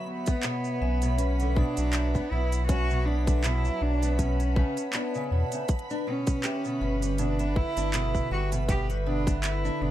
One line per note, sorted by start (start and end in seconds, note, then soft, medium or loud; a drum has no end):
0.00 0.25 F#3 medium
0.00 9.91 B4 medium
0.00 5.65 C#5 medium
0.00 0.82 E5 loud
0.00 5.65 F#5 medium
0.00 2.66 B5 medium
0.00 9.91 B5 medium
0.06 1.19 B3 medium
0.26 0.42 B3 medium
0.26 0.36 B4 medium
0.26 kick loud
0.26 closed hi-hat soft
0.26 cabasa medium
0.43 0.80 B2 medium
0.43 clap loud
0.43 closed hi-hat medium
0.43 cabasa medium
0.64 cabasa soft
0.81 1.64 B1 loud
0.81 1.01 C#4 medium
0.81 1.01 E5 loud
1.02 1.17 B2 medium
1.02 closed hi-hat soft
1.02 cabasa medium
1.18 1.38 B2 medium
1.18 1.58 C#4 loud
1.18 1.30 B4 medium
1.18 closed hi-hat medium
1.18 cabasa medium
1.40 1.56 D3 medium
1.40 closed hi-hat soft
1.40 cabasa soft
1.56 1.76 B2 loud
1.56 2.33 D4 loud
1.56 kick loud
1.77 2.21 B1 medium
1.77 2.13 F#3 medium
1.77 1.93 E5 loud
1.77 closed hi-hat soft
1.77 cabasa medium
1.93 clap loud
1.93 closed hi-hat medium
1.93 cabasa medium
2.14 2.30 B3 loud
2.14 2.24 B4 medium
2.14 kick medium
2.14 cabasa soft
2.31 3.71 B1 medium
2.31 2.68 B2 medium
2.31 2.67 E4 medium
2.52 closed hi-hat soft
2.52 cabasa medium
2.68 2.89 C#4 medium
2.68 3.07 F#4 loud
2.68 2.89 E5 loud
2.68 5.66 A5 medium
2.68 kick loud
2.68 closed hi-hat medium
2.68 cabasa medium
2.90 3.05 B2 loud
2.90 cabasa soft
3.06 3.26 B2 medium
3.06 3.45 D4 loud
3.06 3.19 B4 medium
3.27 3.43 D3 medium
3.27 kick loud
3.27 closed hi-hat soft
3.27 cabasa medium
3.44 3.63 B2 loud
3.44 3.83 E4 loud
3.44 clap loud
3.44 closed hi-hat soft
3.44 cabasa medium
3.65 4.01 F#3 medium
3.65 3.80 E5 loud
3.65 cabasa soft
3.81 4.64 B1 loud
3.81 4.21 D4 loud
4.03 4.17 B3 medium
4.03 4.12 B4 medium
4.03 closed hi-hat soft
4.03 cabasa medium
4.19 4.38 B2 medium
4.19 4.94 C#4 loud
4.19 kick medium
4.19 closed hi-hat soft
4.19 cabasa medium
4.40 closed hi-hat soft
4.40 cabasa soft
4.56 4.76 C#3 medium
4.56 4.76 B4 medium
4.56 kick loud
4.77 closed hi-hat soft
4.77 cabasa medium
4.93 5.48 B3 medium
4.93 5.13 D4 medium
4.93 5.14 D5 medium
4.93 clap medium
4.93 closed hi-hat soft
4.93 cabasa medium
5.15 5.30 C#3 medium
5.15 cabasa soft
5.31 5.44 E2 medium
5.31 5.50 B2 medium
5.52 5.62 C#3 medium
5.52 5.68 E5 medium
5.52 closed hi-hat soft
5.52 cabasa medium
5.68 9.91 D3 medium
5.68 9.91 B4 medium
5.68 9.91 B5 loud
5.68 kick loud
5.68 closed hi-hat medium
5.68 cabasa medium
5.79 closed hi-hat soft
5.90 6.05 D4 loud
5.90 5.99 B4 medium
5.90 cabasa soft
6.07 6.42 B2 medium
6.07 7.20 C#4 loud
6.27 kick loud
6.27 closed hi-hat soft
6.27 cabasa medium
6.44 6.64 G4 medium
6.44 6.64 E5 loud
6.44 clap loud
6.44 closed hi-hat medium
6.44 cabasa medium
6.65 6.80 B2 medium
6.65 cabasa soft
6.81 7.64 G1 loud
6.81 7.00 B2 medium
6.81 6.94 B4 medium
7.02 7.18 G3 medium
7.02 closed hi-hat soft
7.02 cabasa medium
7.18 7.38 B2 loud
7.18 7.57 D4 loud
7.18 closed hi-hat medium
7.18 cabasa medium
7.39 7.75 B3 medium
7.39 7.56 E5 loud
7.39 closed hi-hat soft
7.39 cabasa soft
7.56 8.31 E4 loud
7.56 kick loud
7.77 8.20 G1 medium
7.77 7.92 D4 loud
7.77 7.87 B4 medium
7.77 closed hi-hat soft
7.77 cabasa medium
7.94 8.29 B2 medium
7.94 clap loud
7.94 closed hi-hat medium
7.94 cabasa medium
8.15 kick medium
8.15 cabasa soft
8.31 9.70 G1 medium
8.31 8.49 F#4 loud
8.31 8.51 G4 medium
8.31 8.52 E5 loud
8.52 8.67 B2 loud
8.52 closed hi-hat soft
8.52 cabasa medium
8.69 8.88 B2 medium
8.69 8.86 G4 loud
8.69 8.81 B4 medium
8.69 kick loud
8.69 closed hi-hat medium
8.69 cabasa medium
8.90 9.05 G3 medium
8.90 closed hi-hat soft
8.90 cabasa soft
9.07 9.25 B2 loud
9.07 9.41 D4 loud
9.27 9.63 B3 medium
9.27 9.43 E5 loud
9.27 kick loud
9.27 closed hi-hat soft
9.27 cabasa medium
9.44 9.83 E4 loud
9.44 clap medium
9.44 closed hi-hat medium
9.44 cabasa medium
9.65 9.80 D4 medium
9.65 9.74 B4 medium
9.65 cabasa soft
9.81 9.91 G1 loud
9.81 9.91 B2 medium
9.81 9.91 D4 loud